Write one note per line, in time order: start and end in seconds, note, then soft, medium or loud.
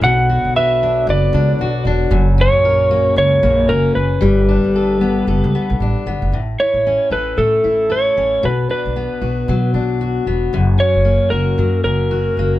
0.00 0.37 B1 loud
0.00 2.11 D3 medium
0.00 4.19 F#3 medium
0.00 2.11 B3 medium
0.00 4.19 F#4 medium
0.00 0.10 A4 medium
0.00 0.56 F#5 loud
0.04 2.13 B2 medium
0.29 1.61 F#4 medium
0.45 1.05 B1 medium
0.56 1.08 B4 medium
0.56 1.10 E5 medium
0.83 1.33 D4 medium
1.07 1.29 F#1 loud
1.07 2.20 B4 medium
1.07 1.84 D5 medium
1.33 1.55 C#2 loud
1.33 1.86 D4 medium
1.59 1.87 B1 medium
1.59 2.38 F#4 medium
1.85 2.07 E1 medium
1.85 2.19 D4 medium
2.11 2.46 F#1 loud
2.11 4.22 F#2 medium
2.11 4.20 C#3 medium
2.11 4.20 A#3 medium
2.38 3.67 C#4 medium
2.38 3.17 C#5 loud
2.53 3.14 A#1 medium
2.65 3.18 A#4 medium
2.91 3.42 A#3 medium
3.16 3.38 C#2 loud
3.16 3.72 C#5 loud
3.43 3.65 A#1 loud
3.43 3.96 A#3 medium
3.69 3.91 F#1 medium
3.69 4.28 C#4 medium
3.69 3.95 A#4 medium
3.95 4.18 F#1 medium
3.95 5.75 B4 medium
4.21 4.57 G1 loud
4.21 6.31 D3 medium
4.21 6.32 G3 medium
4.21 6.30 A3 medium
4.21 6.31 B3 medium
4.21 6.31 G4 medium
4.49 5.80 D4 medium
4.76 5.27 A4 medium
5.01 5.54 B3 medium
5.27 5.40 F#1 medium
5.27 7.11 A4 medium
5.44 5.52 C#2 medium
5.55 6.06 B3 medium
5.70 5.78 B1 medium
5.80 5.93 A1 medium
5.80 6.40 D4 medium
6.06 6.19 G1 medium
6.06 6.39 B3 medium
6.22 6.31 F#1 medium
6.32 6.54 A1 medium
6.32 8.43 A2 medium
6.60 7.63 E4 soft
6.60 7.12 C#5 medium
6.74 6.96 A1 medium
6.87 8.16 C#4 medium
7.10 7.32 A1 medium
7.10 7.88 A4 medium
7.10 7.39 B4 medium
7.37 7.59 A2 medium
7.37 8.49 A3 medium
7.37 7.92 A4 medium
7.64 8.07 A1 medium
7.64 8.49 E4 medium
7.90 8.49 A4 medium
7.90 8.45 C#5 medium
8.17 8.38 A1 medium
8.17 8.49 C#4 medium
8.43 8.64 B1 loud
8.43 10.53 B2 medium
8.43 8.69 B4 medium
8.69 9.73 D4 medium
8.69 9.71 B4 medium
8.86 9.07 B1 medium
8.96 10.26 B3 medium
9.21 9.43 B1 medium
9.21 10.00 F#4 soft
9.48 9.75 B2 loud
9.48 11.58 F#3 medium
9.74 10.17 B1 medium
9.74 10.59 D4 medium
10.01 11.31 F#4 medium
10.26 10.48 E1 medium
10.26 10.59 B3 medium
10.53 10.74 F#1 medium
10.53 12.59 F#2 medium
10.78 11.84 C#4 medium
10.78 11.28 C#5 loud
10.95 11.16 F#1 medium
11.05 12.37 A#3 medium
11.30 11.53 F#1 medium
11.30 12.10 F#4 medium
11.30 11.80 A#4 medium
11.58 11.79 F#2 medium
11.58 12.59 F#3 medium
11.84 12.27 F#1 medium
11.84 12.59 C#4 medium
11.84 12.59 A#4 medium
12.11 12.59 F#4 medium
12.37 12.59 F#1 medium
12.37 12.59 A#3 medium